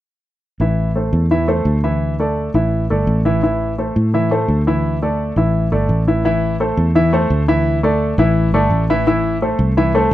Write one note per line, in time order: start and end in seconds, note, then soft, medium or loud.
0.60 1.09 A1 medium
0.60 0.90 E3 medium
0.60 0.90 E4 medium
0.60 0.90 E5 medium
0.96 1.25 A3 medium
0.96 1.25 A4 medium
0.96 1.25 C5 medium
1.13 1.62 E2 medium
1.31 1.46 E3 medium
1.31 1.46 E4 medium
1.31 1.46 E5 medium
1.48 1.77 A3 medium
1.48 1.77 A4 medium
1.48 1.78 C5 medium
1.65 2.48 D2 medium
1.84 2.13 E3 medium
1.84 2.13 E4 medium
1.84 2.13 E5 medium
2.19 2.49 A3 medium
2.19 2.49 A4 medium
2.19 2.49 D5 medium
2.54 2.87 A1 medium
2.54 2.84 E3 medium
2.54 2.84 E4 medium
2.54 2.84 E5 medium
2.90 3.07 G1 medium
2.90 3.19 A3 medium
2.90 3.19 A4 medium
2.90 3.20 D5 medium
3.07 3.90 A1 medium
3.25 3.40 E3 medium
3.25 3.40 E4 medium
3.25 3.40 E5 medium
3.43 3.72 E3 medium
3.43 3.72 E4 medium
3.43 3.72 E5 medium
3.78 4.07 A3 medium
3.78 4.08 A4 medium
3.78 4.08 C5 medium
3.96 4.45 A2 medium
4.14 4.28 E3 medium
4.14 4.28 E4 medium
4.14 4.29 E5 medium
4.31 4.60 A3 medium
4.31 4.60 A4 medium
4.31 4.61 C5 medium
4.48 5.31 D2 medium
4.67 4.96 E3 medium
4.67 4.96 E4 medium
4.67 4.96 E5 medium
5.02 5.31 A3 medium
5.02 5.31 A4 medium
5.02 5.31 D5 medium
5.36 5.70 A1 medium
5.36 5.66 E3 medium
5.36 5.66 E4 medium
5.36 5.66 E5 medium
5.72 5.89 G1 medium
5.72 6.01 A3 medium
5.72 6.01 A4 medium
5.72 6.01 D5 medium
5.89 6.72 A1 medium
6.08 6.22 E3 medium
6.08 6.22 E4 medium
6.08 6.23 E5 medium
6.25 6.54 E3 medium
6.25 6.54 E4 medium
6.25 6.54 E5 medium
6.60 6.89 A3 medium
6.60 6.89 A4 medium
6.60 6.90 C5 medium
6.77 7.27 E2 medium
6.95 7.10 E3 medium
6.95 7.10 E4 medium
6.95 7.10 E5 medium
7.13 7.42 A3 medium
7.13 7.42 A4 medium
7.13 7.42 C5 medium
7.30 8.13 D2 loud
7.48 7.77 E3 medium
7.48 7.77 E4 medium
7.48 7.77 E5 medium
7.83 8.12 A3 medium
7.83 8.13 A4 medium
7.83 8.13 D5 medium
8.18 8.51 A1 loud
8.18 8.48 E3 medium
8.18 8.48 E4 medium
8.18 8.48 E5 medium
8.53 8.70 G1 medium
8.53 8.83 A3 medium
8.53 8.83 A4 medium
8.53 8.83 D5 medium
8.71 9.53 A1 medium
8.90 9.04 E3 medium
8.90 9.04 E4 medium
8.90 9.04 E5 loud
9.07 9.36 E3 medium
9.07 9.36 E4 medium
9.07 9.36 E5 medium
9.42 9.71 A3 medium
9.42 9.71 A4 medium
9.42 9.71 C5 medium
9.59 10.08 C2 loud
9.77 9.92 E3 medium
9.77 9.92 E4 medium
9.77 9.92 E5 medium
9.95 10.14 A3 medium
9.95 10.14 A4 medium
9.95 10.14 C5 medium